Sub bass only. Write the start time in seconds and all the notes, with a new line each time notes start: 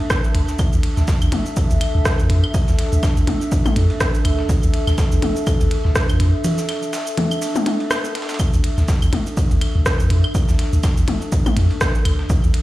0.35 D2
0.73 D2
0.97 D2
1.22 D2
1.32 A1
1.71 D2
1.95 D2
2.19 F2
2.30 F2
2.68 D2
2.93 D2
3.17 D2
3.28 A1
3.76 F2
4.25 D2
4.63 D2
4.87 D2
5.12 D2
5.22 A1
5.61 D2
5.85 D2
6.09 F2
6.20 F2
8.53 D2
8.78 D2
9.02 D2
9.13 A1
9.51 D2
9.75 D2
10.00 F2
10.10 F2
10.48 D2
10.73 D2
10.97 D2
11.08 A1
11.57 F2
12.05 D2
12.44 D2